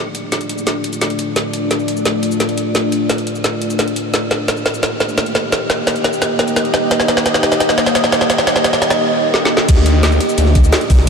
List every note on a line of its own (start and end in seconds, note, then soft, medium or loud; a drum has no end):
0.00 4.10 A3 medium
0.00 4.10 D4 medium
0.00 4.10 F4 medium
0.00 4.10 D5 medium
0.15 closed hi-hat medium
0.15 cabasa soft
0.32 snare medium
0.32 closed hi-hat medium
0.32 cabasa soft
0.41 closed hi-hat soft
0.41 cabasa soft
0.49 closed hi-hat medium
0.58 cabasa medium
0.67 snare medium
0.67 closed hi-hat medium
0.67 cabasa soft
0.84 closed hi-hat medium
0.84 cabasa soft
0.93 closed hi-hat soft
0.93 cabasa medium
1.01 snare medium
1.01 closed hi-hat medium
1.01 cabasa medium
1.10 closed hi-hat soft
1.19 closed hi-hat medium
1.19 cabasa soft
1.36 snare medium
1.36 closed hi-hat medium
1.36 cabasa soft
1.53 closed hi-hat medium
1.53 cabasa soft
1.71 snare medium
1.71 closed hi-hat medium
1.71 cabasa soft
1.79 cabasa soft
1.88 closed hi-hat medium
1.97 cabasa medium
2.05 snare medium
2.05 closed hi-hat medium
2.05 cabasa soft
2.23 closed hi-hat medium
2.23 cabasa soft
2.31 cabasa medium
2.40 snare medium
2.40 closed hi-hat loud
2.40 cabasa soft
2.49 closed hi-hat soft
2.58 closed hi-hat medium
2.58 cabasa soft
2.75 snare medium
2.75 closed hi-hat medium
2.75 cabasa soft
2.92 closed hi-hat medium
2.92 cabasa soft
3.10 snare medium
3.10 closed hi-hat medium
3.10 cabasa soft
3.18 closed hi-hat soft
3.18 cabasa soft
3.27 closed hi-hat medium
3.36 cabasa medium
3.44 snare medium
3.44 closed hi-hat medium
3.44 cabasa soft
3.62 closed hi-hat medium
3.62 cabasa soft
3.70 closed hi-hat soft
3.70 cabasa medium
3.79 snare medium
3.79 closed hi-hat medium
3.79 cabasa soft
3.88 closed hi-hat soft
3.96 closed hi-hat medium
3.96 cabasa soft
4.14 9.64 A#3 medium
4.14 9.64 D#4 medium
4.14 9.65 G4 medium
4.14 9.64 D#5 medium
4.14 snare medium
4.14 closed hi-hat medium
4.14 cabasa soft
4.31 snare medium
4.31 closed hi-hat medium
4.31 cabasa soft
4.48 snare medium
4.48 closed hi-hat medium
4.48 cabasa soft
4.57 cabasa soft
4.66 snare medium
4.66 closed hi-hat medium
4.74 cabasa medium
4.83 snare medium
4.83 closed hi-hat medium
4.83 cabasa soft
5.00 snare medium
5.00 closed hi-hat medium
5.00 cabasa soft
5.09 cabasa medium
5.18 snare medium
5.18 closed hi-hat medium
5.18 cabasa soft
5.26 closed hi-hat soft
5.35 snare medium
5.35 closed hi-hat medium
5.35 cabasa soft
5.52 snare medium
5.52 closed hi-hat medium
5.52 cabasa soft
5.70 snare medium
5.70 closed hi-hat medium
5.70 cabasa soft
5.87 snare medium
5.87 closed hi-hat medium
5.87 cabasa soft
5.96 closed hi-hat soft
5.96 cabasa soft
6.04 snare medium
6.04 closed hi-hat medium
6.13 cabasa medium
6.22 snare medium
6.22 closed hi-hat medium
6.22 cabasa medium
6.39 snare medium
6.39 closed hi-hat medium
6.39 cabasa soft
6.48 closed hi-hat soft
6.48 cabasa medium
6.56 snare medium
6.56 closed hi-hat medium
6.56 cabasa soft
6.65 closed hi-hat soft
6.74 snare medium
6.74 closed hi-hat medium
6.74 cabasa soft
6.91 snare medium
6.91 closed hi-hat medium
6.91 cabasa medium
7.00 snare medium
7.08 snare loud
7.08 closed hi-hat medium
7.08 cabasa soft
7.17 snare medium
7.26 snare loud
7.26 closed hi-hat medium
7.26 cabasa medium
7.34 snare medium
7.34 cabasa soft
7.43 snare medium
7.43 closed hi-hat medium
7.52 snare medium
7.52 cabasa medium
7.60 snare loud
7.60 closed hi-hat medium
7.60 cabasa soft
7.69 snare medium
7.78 snare medium
7.78 closed hi-hat medium
7.78 cabasa soft
7.86 snare medium
7.86 cabasa medium
7.95 snare loud
7.95 closed hi-hat medium
7.95 cabasa medium
8.04 snare medium
8.04 closed hi-hat soft
8.12 snare loud
8.12 closed hi-hat medium
8.12 cabasa soft
8.21 snare medium
8.30 snare loud
8.30 closed hi-hat medium
8.30 cabasa medium
8.38 snare medium
8.47 snare loud
8.47 closed hi-hat medium
8.47 cabasa soft
8.56 snare medium
8.64 snare loud
8.64 closed hi-hat loud
8.64 cabasa medium
8.73 snare medium
8.73 closed hi-hat soft
8.73 cabasa soft
8.82 snare loud
8.82 closed hi-hat medium
8.90 snare loud
8.90 closed hi-hat soft
8.90 cabasa medium
9.34 snare medium
9.45 snare medium
9.57 snare loud
9.68 10.19 D2 loud
9.68 11.09 A3 medium
9.68 11.09 D4 medium
9.68 11.09 F4 medium
9.68 11.09 D5 medium
9.68 kick loud
9.68 closed hi-hat loud
9.68 ride medium
9.68 crash loud
9.68 cabasa medium
9.77 snare soft
9.86 closed hi-hat medium
9.86 ride medium
9.86 cabasa soft
10.03 snare loud
10.03 closed hi-hat loud
10.03 ride medium
10.03 cabasa medium
10.12 cabasa soft
10.20 closed hi-hat medium
10.20 ride medium
10.29 cabasa medium
10.38 10.71 D2 loud
10.38 closed hi-hat loud
10.38 ride medium
10.38 cabasa medium
10.47 snare soft
10.55 kick loud
10.55 closed hi-hat medium
10.55 ride medium
10.55 cabasa soft
10.64 cabasa medium
10.73 snare loud
10.73 closed hi-hat loud
10.73 ride medium
10.73 cabasa medium
10.81 closed hi-hat soft
10.90 11.06 C2 loud
10.90 kick loud
10.90 open hi-hat medium
10.90 cabasa soft
10.99 snare medium